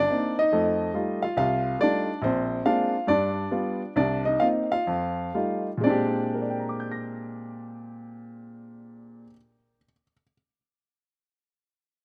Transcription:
Already playing: D4 D5
0.10 A#3 C4 D#4
0.39 D#4 D#5
0.52 F2 A3
0.94 G3 A3 D#4 F4
1.22 F4 F5
1.37 C2 F4 F5
1.79 G3 A3 D#4 F4 D5
1.83 D4
2.22 A#1 C4 C5
2.65 G#3 A#3 C4 D4 F4 F5
3.07 G2 D4 D5
3.51 G3 B3 F4
3.96 C2 D4 D5
4.25 D#4 D#5
4.40 A#3 C4 D#4 F4 F5
4.72 F4 F5
4.87 F2
5.35 G3 A3 D#4 F4
5.77 A#2 G#3
5.83 C4 D4 D5
5.90 G4
6.34 A#4
6.42 D5
6.50 G5
6.60 A#5
6.69 D6
6.80 G6
6.92 A#6

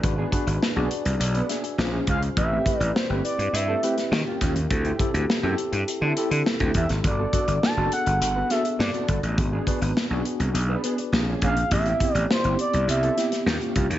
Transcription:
0.03 G#1 D4 F#4 G#4 B4, muted clean electric guitar stroke, kick, closed hi-hat
0.18 B3 D4 G#4
0.32 B3 D4 F#4 G#4 B4, kick, closed hi-hat
0.47 G#1, muted clean electric guitar stroke, closed hi-hat
0.62 muted clean electric guitar stroke, snare
0.76 B1 B3 D4 F#4 G#4 D5
0.91 muted clean electric guitar stroke, closed hi-hat
1.05 C2, muted clean electric guitar stroke, closed hi-hat
1.20 B1 D5, muted clean electric guitar stroke, closed hi-hat
1.34 B3 D4 B4, closed hi-hat
1.49 B3 D4 G#4 E5, snare, closed hi-hat
1.64 G#5, muted clean electric guitar stroke, closed hi-hat
1.78 A#1 C4 F4 G#4 C5, snare
1.85 C#4
1.93 C#4 F4 G#4
2.07 C#2 C#4 F4 G#4 F5, kick, closed hi-hat
2.22 muted clean electric guitar stroke, closed hi-hat
2.37 A1 C4 E4 G4 B4 E5, muted clean electric guitar stroke, kick, closed hi-hat
2.51 A3 C4 G4
2.65 A3 C4 E4 G4 B4, kick, closed hi-hat
2.79 A1 D5, closed hi-hat
2.95 C5, snare
3.09 G1 A3 C4 E4 G4 B4
3.24 D5, muted clean electric guitar stroke, closed hi-hat
3.38 G2, muted clean electric guitar stroke, closed hi-hat
3.53 G2 E5, muted clean electric guitar stroke, closed hi-hat
3.68 A3 C4 A4
3.83 A3 C4 E4 G4 B4, closed hi-hat
3.97 muted clean electric guitar stroke, snare, closed hi-hat
4.11 D#3 C#4 F4 G4 A#4, snare
4.26 C#4 F4 G4
4.41 D#2 C#4 F4 G4, kick, snare, closed hi-hat
4.55 D#2, muted clean electric guitar stroke, closed hi-hat
4.70 D2 C4 E4 G4 A4, muted clean electric guitar stroke, kick, closed hi-hat
4.85 C4 E4 G4, closed hi-hat
4.99 C4 E4 G4 A4, kick, closed hi-hat
5.14 D2, muted clean electric guitar stroke, closed hi-hat
5.29 muted clean electric guitar stroke, snare
5.43 F#2 C4 E4 G4 A4
5.58 muted clean electric guitar stroke, closed hi-hat
5.72 G2, muted clean electric guitar stroke, closed hi-hat
5.88 muted clean electric guitar stroke, closed hi-hat
6.01 D3 C4 E4 A4
6.16 C4 E4 G4 A4, closed hi-hat
6.31 D3, muted clean electric guitar stroke, closed hi-hat
6.46 muted clean electric guitar stroke, snare
6.60 D2 C4 E4 G4, kick, closed hi-hat
6.74 E2 C4 E4 G4 E5, kick, closed hi-hat
6.89 G#1, muted clean electric guitar stroke, snare, closed hi-hat
7.04 G1 B3 D4 F#4 A4 D5, muted clean electric guitar stroke, kick, closed hi-hat
7.18 B3 F#4 A4
7.33 B3 D4 F#4 A4, kick, closed hi-hat
7.48 G1, muted clean electric guitar stroke, closed hi-hat
7.63 A5, snare
7.76 F#1 B3 D4 F#4 G#4 A4
7.84 A4
7.92 F#5, muted clean electric guitar stroke, closed hi-hat
8.06 G1, muted clean electric guitar stroke, closed hi-hat
8.21 G1 F#5, muted clean electric guitar stroke, closed hi-hat
8.36 B3 F#4 B4
8.49 B3 D4 F#4 G#4 A4 E5, snare, closed hi-hat
8.57 A4
8.65 muted clean electric guitar stroke, closed hi-hat
8.79 G2 D5, muted clean electric guitar stroke, snare
8.94 B3 F#4 A4, closed hi-hat
9.08 G1 B3 F#4 A4, kick, closed hi-hat
9.23 A1, muted clean electric guitar stroke, closed hi-hat
9.37 G#1 B3 D4 F#4 G#4, muted clean electric guitar stroke, kick, closed hi-hat
9.53 B3 D4 G#4
9.66 B3 D4 F#4 G#4 B4, kick, closed hi-hat
9.81 G#1, muted clean electric guitar stroke, closed hi-hat
9.96 muted clean electric guitar stroke, snare
10.10 B1 B3 D4 F#4 G#4
10.25 muted clean electric guitar stroke, closed hi-hat
10.40 C2, muted clean electric guitar stroke, closed hi-hat
10.54 B1, muted clean electric guitar stroke, closed hi-hat
10.69 B3 D4 G#4 B4
10.84 B3 D4 G#4 B4, closed hi-hat
10.98 D5, muted clean electric guitar stroke, closed hi-hat
11.12 A#1 C4 C#4 F4 G4, snare
11.20 G#4
11.28 A#3 C#4 G#4
11.42 A#1 A#3 C#4 G#4 F5, kick, closed hi-hat
11.57 muted clean electric guitar stroke, closed hi-hat
11.71 A1 B3 C4 E4 G4 E5, muted clean electric guitar stroke, kick, closed hi-hat
11.86 C4 E4 G4, closed hi-hat
12.00 B3 C4 E4 G4, kick, closed hi-hat
12.15 A1 D5, closed hi-hat
12.29 C5, muted clean electric guitar stroke, snare
12.44 G1 B3 C4 E4 G4, closed hi-hat
12.58 D5, muted clean electric guitar stroke, closed hi-hat
12.73 C2, muted clean electric guitar stroke, closed hi-hat
12.88 C2 E5, muted clean electric guitar stroke, closed hi-hat
13.03 C4 E4 A4, closed hi-hat
13.17 B3 C4 E4 G4, snare, closed hi-hat
13.32 muted clean electric guitar stroke, snare, closed hi-hat
13.46 D#2 A#3 C#4 F4 F#4, muted clean electric guitar stroke, snare
13.54 G4
13.61 C#4 F4 G4, closed hi-hat
13.75 C2 C#4 F4 G4, kick, closed hi-hat
13.90 D#2, muted clean electric guitar stroke, closed hi-hat

